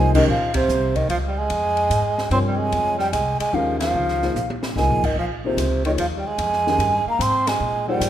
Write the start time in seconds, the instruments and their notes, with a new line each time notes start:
Already playing: upright bass C2, upright piano F3 A#3 D#4 G#4 C5, tenor saxophone G#3, flute G#5
0.14 upright piano D#3 G#3 C#4 G4 A#4, tenor saxophone D#3, flute D#5, kick, crash
0.28 upright bass A#1, tenor saxophone F3, flute F5
0.54 tenor saxophone C3, flute C5, kick, ride
0.69 upright bass C2, hi-hat pedal
0.96 tenor saxophone D#3, flute D#5, kick, ride
1.09 upright bass C#2, tenor saxophone F3, flute F5, ride
1.28 tenor saxophone G3, flute G5
1.38 tenor saxophone G#3, flute G#5
1.50 upright bass F2, ride
1.77 ride
1.90 upright bass G#2, hi-hat pedal, ride
2.18 snare
2.31 upright bass G2, upright piano C3 F3 F4 A#4 C#5, tenor saxophone C4, flute C6, ride
2.48 tenor saxophone G3, flute G5
2.56 tenor saxophone G#3, flute G#5
2.72 upright bass F2, ride
2.98 tenor saxophone G3, flute G5, snare
3.12 upright bass C2, tenor saxophone G#3, flute G#5, hi-hat pedal, ride
3.40 tenor saxophone G#3, flute G#5, muted upright bass stroke, ride
3.53 upright bass D#2, upright piano D#3 G#3 C#4 G4 A#4, tenor saxophone F3, flute F5
3.80 tenor saxophone F3, flute F5, snare, ride
3.94 upright bass C#2
4.08 snare
4.21 upright piano F3 A#3 D#4 G#4 C5, snare
4.35 upright bass A#1, hi-hat pedal, high tom
4.50 high tom
4.63 snare
4.76 upright bass C2, upright piano F3 A#3 D#4 G#4 A#4, tenor saxophone G#3, flute G#5, snare
4.90 upright bass A#1
5.03 upright bass G#1, tenor saxophone D#3, flute D#5, kick, crash
5.16 upright bass A#1, tenor saxophone F3, flute F5
5.44 tenor saxophone C3, upright piano F3 A#3 D#4 G#4 C5, flute C5
5.57 upright bass C#2, hi-hat pedal, ride
5.85 tenor saxophone D#3, upright piano F3 A#3 D#4 G#4 C#5, flute D#5, ride
5.98 upright bass D#2, tenor saxophone F3, flute F5, ride
6.17 tenor saxophone G3, flute G5
6.27 tenor saxophone G#3, flute G#5
6.38 upright bass F2, ride
6.53 snare
6.67 upright piano D#3 G#3 C#4 G4 A#4, snare
6.78 upright bass G2, ride
7.06 tenor saxophone A#3, flute A#5, muted upright bass stroke
7.19 upright bass G#2, tenor saxophone C4, flute C6, hi-hat pedal, ride
7.47 tenor saxophone G#3, flute G#5, snare, ride
7.60 upright bass A#2
7.87 upright piano F3 A#3 D#4 G#4 C5, tenor saxophone G3, flute G5
8.00 upright bass G#2, hi-hat pedal, ride